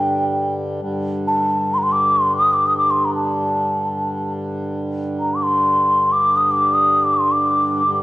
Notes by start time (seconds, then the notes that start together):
Already playing: G2 D3 G5
0.82 G2 D3
1.28 A5
1.74 C6
1.78 A#5
1.83 C6
1.92 D6
2.21 C6
2.36 D#6
2.53 D6
2.66 D#6
2.78 D6
2.90 C6
3.05 A#5
3.15 A5
5.20 A#5
5.35 D6
5.43 C6
6.12 D6
6.36 D#6
6.51 D6
6.73 D#6
7.04 D6
7.13 C6
7.32 D6
7.83 G2 D3